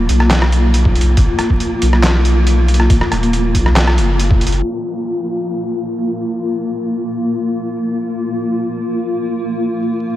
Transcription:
Already playing: A#3 F4
0.09 B1, closed hi-hat
0.20 cross-stick
0.31 snare, clap, closed hi-hat
0.42 cross-stick
0.52 closed hi-hat
0.74 closed hi-hat
0.85 kick
0.95 closed hi-hat
1.01 closed hi-hat
1.17 G#1, kick, closed hi-hat
1.39 cross-stick, closed hi-hat
1.50 kick
1.60 closed hi-hat
1.82 B1, closed hi-hat
1.93 cross-stick
2.03 snare, clap, closed hi-hat
2.25 closed hi-hat
2.47 closed hi-hat
2.68 closed hi-hat
2.74 closed hi-hat
2.80 cross-stick
2.90 G#1, kick, closed hi-hat
3.01 cross-stick
3.12 D#1, cross-stick, closed hi-hat
3.23 closed hi-hat
3.33 closed hi-hat
3.55 B1, kick, closed hi-hat
3.66 cross-stick
3.76 snare, clap, closed hi-hat
3.88 cross-stick
3.98 F#1, closed hi-hat
4.20 closed hi-hat
4.31 kick
4.41 closed hi-hat
4.47 closed hi-hat
4.52 closed hi-hat
4.63 A#3 F4

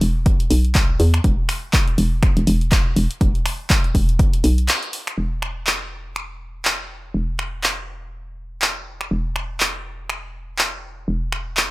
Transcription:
0.01 E1, open hi-hat
0.26 kick, closed hi-hat
0.40 closed hi-hat
0.51 B1, open hi-hat
0.65 closed hi-hat
0.75 kick, clap, closed hi-hat
1.00 E2, open hi-hat
1.14 finger snap, closed hi-hat
1.24 E1, kick, closed hi-hat
1.49 finger snap, open hi-hat
1.73 kick, clap, closed hi-hat
1.88 closed hi-hat
1.98 E1, open hi-hat
2.23 finger snap, kick, closed hi-hat
2.37 E1, closed hi-hat
2.47 E1, open hi-hat
2.61 closed hi-hat
2.72 kick, clap, closed hi-hat
2.96 E1, open hi-hat
3.11 closed hi-hat
3.21 E1, kick, closed hi-hat
3.35 closed hi-hat
3.46 finger snap, open hi-hat
3.70 kick, clap, closed hi-hat
3.84 closed hi-hat
3.95 E1, kick, open hi-hat
4.09 closed hi-hat
4.19 kick, closed hi-hat
4.33 closed hi-hat
4.44 B1, open hi-hat
4.58 closed hi-hat
4.68 clap, closed hi-hat
4.83 closed hi-hat
4.93 open hi-hat
5.07 finger snap, closed hi-hat
5.18 E1
5.42 finger snap
5.67 clap
6.16 finger snap
6.65 clap
7.14 E1
7.39 finger snap
7.64 clap
8.62 clap
9.01 finger snap
9.11 E1
9.36 finger snap
9.60 clap
10.10 finger snap
10.59 clap
11.08 E1
11.32 finger snap
11.57 clap

